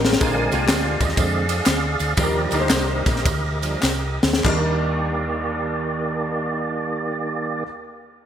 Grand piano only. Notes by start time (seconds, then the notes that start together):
0.05 G4 A#4
0.20 A#2 G#3 A#3 D4 F4 A#4
0.52 G#3 A#3 D4 F4 G4
2.18 D#3 G3 A#3 D4 D#4 A#4
2.52 G3 A#3 D4 D#4 A#4
2.60 C5
4.43 D#2 G3 D4 D#4
4.47 A#4